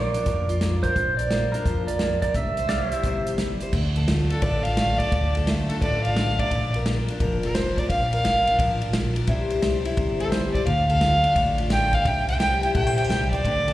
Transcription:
Already playing: A#1 A#2 F3 A#3 D4 F4 A#4 D5 F5
0.14 D4, closed hi-hat
0.26 F2 F3 A#4, kick, closed hi-hat
0.49 F4, closed hi-hat
0.61 A#3, snare, closed hi-hat
0.83 A#4 C5, kick, closed hi-hat
0.96 A#1 A#2, kick, closed hi-hat
1.17 A#4 D5, closed hi-hat
1.31 A#3 F4, snare, closed hi-hat
1.52 D4 A#4, closed hi-hat
1.66 F2 F3 F4, kick, closed hi-hat
1.88 F4 D5, closed hi-hat
1.99 A#3, snare, closed hi-hat
2.22 A#4 D5, kick, closed hi-hat
2.34 C2 C3 E5, kick, closed hi-hat
2.57 C5, closed hi-hat
2.69 G3 G4 D5 F5, snare, closed hi-hat
2.90 E4 C5 E5, closed hi-hat
3.04 G1 C3 C5, kick, closed hi-hat
3.27 G4, closed hi-hat
3.38 G3, snare, closed hi-hat
3.60 C5, closed hi-hat
3.73 D2 D3, kick, crash
3.96 A4, ride
4.08 A3 F4, snare, ride
4.30 D4 A4, ride
4.42 A1 A2 A4 D5, kick, ride
4.63 F4 F5, ride
4.77 A3, snare, ride
4.98 A4 D5, kick, ride
5.12 D2 D3, kick, ride
5.35 A4, ride
5.47 A3 F4, snare, ride
5.68 D4 A4, ride
5.82 A1 A2 A4 D5, kick, ride
6.04 F4 F5, ride
6.16 D3, snare, ride
6.39 C3 D5, kick, ride
6.51 A#1 A#2, kick, ride
6.74 A#4, ride
6.86 A#3 F4, snare, ride
7.08 D4, ride
7.20 F1 F3 A#4, kick, ride
7.43 F4 A#4, ride
7.54 A#3 C5, snare, ride
7.78 A#4 D5, kick, ride
7.90 A#1 A#2 F5, kick, ride
8.12 A#4 F5, ride
8.24 G1 A#3 F4, snare, ride
8.47 D4, ride
8.59 A1 F3 A#4, kick, ride
8.81 F4, ride
8.93 A#1 A#3, snare, ride
9.16 A#4, ride
9.27 C2 C3 G3 E4 G4 C5, kick, ride
9.50 C5, ride
9.62 G3 G4, snare, ride
9.85 E4, ride
9.97 G1 C3 C5, kick, ride
10.20 G4 A4, ride
10.31 G3 C5, snare, ride
10.53 C5 D5, kick, ride
10.66 D2 D3 F5, kick, ride
10.89 A4 F5, ride
11.01 A3 F4, snare, ride
11.24 D4, ride
11.36 A1 A2 A4, kick, ride
11.58 F4, ride
11.70 A3 G5, snare, ride
11.93 A4 F5, kick, ride
12.05 C2 C3 G5, kick, ride
12.29 C5 G5, ride
12.40 G3 G4 G5, snare, ride
12.63 E4 G5, ride
12.74 A#1 C3 A4 G5, kick, ride
12.87 C5
12.97 E4 G5, ride
13.04 G4
13.09 C2 G3 G5, snare, ride
13.31 C5 D5, kick, ride
13.45 D2 D3, kick, ride
13.68 A4, ride

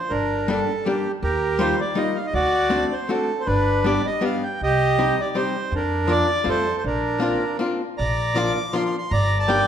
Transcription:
Already playing: C5
0.09 G1 D4 A#4
0.48 G3 A#3 D4 G4 A4
0.85 G3 A#3 D4 G4
1.23 D#2 G4 A#4
1.59 G3 A#3 D#4 F4 C5
1.80 D5
1.95 G3 A#3 D#4 F4 D#5
2.16 F5
2.26 D#5
2.34 D2 F#4 D5
2.70 A3 C4 D4 F#4
2.92 C5
3.09 A3 C4 D4 F#4 A4
3.40 C5
3.46 G1 D4 B4
3.84 G3 B3 D4 G4 D5
4.06 D#5
4.21 G3 B3 D4 G4 F5
4.44 G5
4.61 C2 G4 D#5
4.98 G3 C4 D#4 G4
5.20 D5
5.35 G3 C4 D#4 G4 C5
5.72 F2 D4
5.76 A#4
6.08 F3 A#3 D4 F4
6.12 D5
6.44 F2 G3 A3 C4 F4
6.49 A4 C5
6.78 C5
6.84 A#1 D4 A#4
7.20 A#3 C4 D4 F4
7.59 A#3 C4 D4 F4
7.97 A#1 D5 A#5
8.35 F3 A#3 D4 F4 D6
8.73 F3 A#3 D4 F4 C6
8.86 C6
8.98 C6
9.11 G1 D5 A#5
9.39 A5
9.48 G3 A#3 D4 G4 G5

